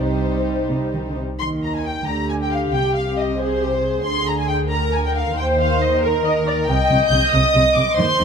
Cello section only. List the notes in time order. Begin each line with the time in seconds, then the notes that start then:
0.00 C3
0.70 C3
0.93 D#3
1.07 D3
1.17 C3
1.39 D#3
2.07 D3
2.74 C3
4.06 D3
5.37 D#3
6.67 C3
6.89 C3
7.11 C3
7.33 C3
7.54 C3
7.76 C3
7.98 D#3
8.19 D#3